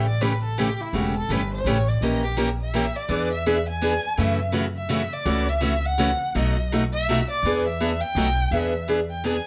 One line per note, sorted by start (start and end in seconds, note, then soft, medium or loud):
0.00 0.70 A1 medium
0.07 0.23 D5 medium
0.21 0.31 C#3 medium
0.21 0.31 E3 medium
0.21 0.32 A3 medium
0.21 0.32 C#4 medium
0.21 0.32 G4 loud
0.21 0.43 B4 medium
0.44 0.59 A4 medium
0.58 0.68 C#3 medium
0.58 0.68 E3 medium
0.58 0.68 A3 medium
0.58 0.68 C#4 medium
0.58 0.82 G4 medium
0.58 0.69 G4 loud
0.81 0.96 E4 medium
0.93 1.22 E1 medium
0.93 1.14 C#3 medium
0.93 1.13 E3 medium
0.93 1.14 A3 medium
0.93 1.14 C#4 medium
0.93 1.15 F#4 medium
0.93 1.14 G4 medium
1.16 1.33 A4 medium
1.29 1.60 G1 medium
1.29 1.40 C#3 medium
1.29 1.40 E3 medium
1.29 1.41 A3 medium
1.29 1.41 C#4 medium
1.29 1.41 G4 medium
1.29 1.52 B4 medium
1.54 1.69 C5 medium
1.64 1.95 A1 medium
1.64 1.76 C#3 medium
1.64 1.77 E3 medium
1.64 1.77 A3 loud
1.64 1.77 C#4 loud
1.64 1.77 G4 loud
1.64 1.90 C#5 medium
1.88 2.03 D5 medium
2.01 2.88 A#1 medium
2.01 2.22 E3 medium
2.01 2.23 A#3 medium
2.01 2.22 C#4 medium
2.01 2.23 G4 medium
2.01 2.23 A#4 medium
2.01 2.23 D#5 medium
2.24 2.32 G4 medium
2.37 2.48 E3 medium
2.37 2.48 A#3 loud
2.37 2.48 C#4 loud
2.37 2.49 G4 loud
2.37 2.49 A#4 loud
2.60 2.98 E5 medium
2.74 2.84 E3 medium
2.74 2.85 A#3 medium
2.74 2.85 C#4 medium
2.74 2.85 G4 loud
2.74 2.85 A#4 loud
2.96 3.31 D5 medium
3.08 3.96 E2 medium
3.08 3.29 E3 medium
3.08 3.30 B3 medium
3.08 3.30 D4 medium
3.08 3.31 G#4 medium
3.32 3.65 E5 medium
3.46 3.57 E3 medium
3.46 3.57 B3 medium
3.46 3.57 D4 medium
3.46 3.57 G#4 loud
3.69 4.21 G#5 loud
3.82 3.93 E3 medium
3.82 3.93 B3 medium
3.82 3.93 D4 loud
3.82 3.94 G#4 loud
4.17 5.05 F#2 medium
4.17 4.38 C#3 medium
4.17 4.39 E3 medium
4.17 4.38 A3 medium
4.17 4.39 C#4 medium
4.17 4.39 F#4 medium
4.17 4.55 E5 medium
4.52 4.64 C#3 medium
4.52 4.64 E3 medium
4.52 4.65 A3 medium
4.52 4.65 C#4 medium
4.52 4.65 F#4 loud
4.76 5.14 E5 medium
4.89 5.00 C#3 loud
4.89 5.01 E3 medium
4.89 5.01 A3 medium
4.89 5.01 C#4 loud
4.89 5.01 F#4 loud
5.13 5.50 D5 loud
5.25 6.13 C#2 medium
5.25 5.46 C#3 medium
5.25 5.46 E3 medium
5.25 5.47 A3 medium
5.25 5.47 C#4 medium
5.25 5.47 F#4 medium
5.49 5.87 E5 medium
5.61 5.72 C#3 medium
5.61 5.73 E3 medium
5.61 5.73 A3 medium
5.61 5.73 C#4 medium
5.61 5.73 F#4 medium
5.85 6.37 F#5 loud
5.98 6.09 C#3 medium
5.98 6.10 E3 loud
5.98 6.10 A3 loud
5.98 6.10 C#4 loud
5.98 6.10 F#4 loud
6.35 7.22 B1 medium
6.35 6.55 B2 medium
6.35 6.56 F#3 medium
6.35 6.56 A3 medium
6.35 6.56 D#4 medium
6.35 6.56 F#4 medium
6.35 6.71 D#5 medium
6.72 6.82 B2 medium
6.72 6.82 F#3 medium
6.72 6.83 A3 loud
6.72 6.83 D#4 loud
6.72 6.83 F#4 loud
6.93 7.27 E5 loud
7.09 7.19 B2 medium
7.09 7.19 F#3 loud
7.09 7.19 A3 medium
7.09 7.20 D#4 loud
7.09 7.20 F#4 loud
7.30 7.63 D5 loud
7.43 8.01 E2 medium
7.43 7.64 E3 medium
7.43 7.65 B3 medium
7.43 7.65 D4 medium
7.43 7.65 G#4 medium
7.66 8.02 E5 medium
7.80 7.91 E3 loud
7.80 7.91 B3 medium
7.80 7.91 D4 loud
7.80 7.91 G#4 loud
8.00 8.53 G5 loud
8.15 8.44 B1 medium
8.15 8.27 B2 medium
8.15 8.27 F#3 medium
8.15 8.27 A3 medium
8.15 8.27 D#4 loud
8.15 8.27 F#4 loud
8.51 9.38 E2 medium
8.51 8.73 E3 medium
8.51 8.73 B3 medium
8.51 8.73 D4 medium
8.51 8.73 G#4 medium
8.51 8.88 E5 medium
8.88 8.99 E3 medium
8.88 8.99 B3 medium
8.88 8.99 D4 medium
8.88 8.99 G#4 medium
9.10 9.27 G5 medium
9.24 9.35 E3 medium
9.24 9.35 B3 medium
9.24 9.35 D4 medium
9.24 9.35 G#4 loud
9.24 9.47 G#5 medium